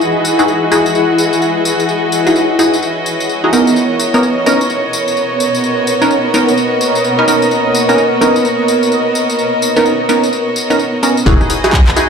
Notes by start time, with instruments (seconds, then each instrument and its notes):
Already playing: synth stab D#4 E4 F#4 G#4, ambient pad E4 G#4 D#5 F#5, violin section F#4 G#4 B4 D#5
0.01 tambourine
0.25 tambourine
0.39 synth stab D#4 E4 F#4 G#4, tambourine
0.48 tambourine
0.71 synth stab D#4 E4 F#4 G#4, tambourine
0.86 tambourine
0.95 tambourine
1.16 ambient pad C#5, tambourine
1.33 tambourine
1.42 tambourine
1.65 tambourine
1.80 tambourine
1.89 tambourine
2.12 tambourine
2.26 synth stab D#4 E4 F#4 G#4, tambourine
2.36 tambourine
2.59 synth stab D#4 E4 F#4 G#4, tambourine
2.74 tambourine
2.83 tambourine
3.06 tambourine
3.20 tambourine
3.29 tambourine
3.44 synth stab D#4 E4 F#4 G#4
3.52 violin section B3 F#4 A#4 C#5, synth stab B3 C#4 D#4 A#4, ambient pad B3, tambourine
3.67 tambourine
3.76 tambourine
4.00 tambourine
4.10 synth stab B3 C#4 D#4 A#4, ambient pad A#4, tambourine
4.23 tambourine
4.46 synth stab B3 C#4 D#4 A#4, tambourine
4.61 tambourine
4.70 tambourine
4.93 tambourine
5.08 tambourine
5.13 ambient pad D#5
5.17 tambourine
5.40 tambourine
5.55 tambourine
5.64 tambourine
5.87 tambourine
6.01 synth stab B3 C#4 D#4 A#4, tambourine
6.11 tambourine
6.34 synth stab B3 C#4 D#4 A#4, tambourine
6.48 tambourine
6.57 tambourine
6.81 tambourine
6.95 tambourine
7.04 tambourine
7.19 synth stab B3 C#4 D#4 A#4
7.28 synth stab B3 C#4 D#4 A#4, tambourine
7.42 tambourine
7.51 tambourine
7.75 tambourine
7.89 synth stab B3 C#4 D#4 A#4, tambourine
7.98 tambourine
8.21 synth stab B3 C#4 D#4 A#4, tambourine
8.36 tambourine
8.45 tambourine
8.68 tambourine
8.83 tambourine
8.92 tambourine
9.15 tambourine
9.30 tambourine
9.39 tambourine
9.62 tambourine
9.76 synth stab B3 C#4 D#4 A#4, tambourine
9.86 tambourine
10.09 synth stab B3 C#4 D#4 A#4, tambourine
10.23 tambourine
10.33 tambourine
10.56 tambourine
10.70 synth stab B3 C#4 D#4 A#4, tambourine
10.79 tambourine
11.03 synth stab B3 C#4 D#4 A#4, tambourine
11.17 tambourine
11.26 sub bass E1, synth stab D#4 E4 F#4 G#4, violin section F#4 G#4 B4 D#5, kick, tambourine
11.41 cross-stick, tambourine
11.50 open hi-hat, tambourine
11.64 synth stab D#4 E4 F#4 G#4, cross-stick, closed hi-hat, tambourine
11.73 kick, clap, tambourine
11.88 clap, closed hi-hat, tambourine
11.96 synth stab D#4 E4 F#4 G#4, open hi-hat, tambourine